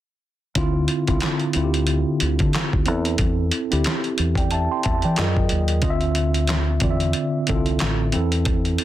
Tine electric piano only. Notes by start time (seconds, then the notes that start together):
0.56 D3 C4 E4 F4
1.08 D3 C4 E4 F4
1.55 D3 C4 E4 F4
1.64 G4
2.86 C4 E4 A4
3.71 C4 E4 G4
4.37 D5 G5
4.51 E5 A5
4.71 G5 C6
4.85 E5 A5
5.04 D5 G5
5.17 F#3 F4 G#4 A#4 D#5
5.82 D3 C4 F4 D#5
5.90 E5
6.82 D3 C4 F4 D5
6.90 E5
7.48 D3 C4 E4 A4
7.56 F4
8.13 C4 E4 A4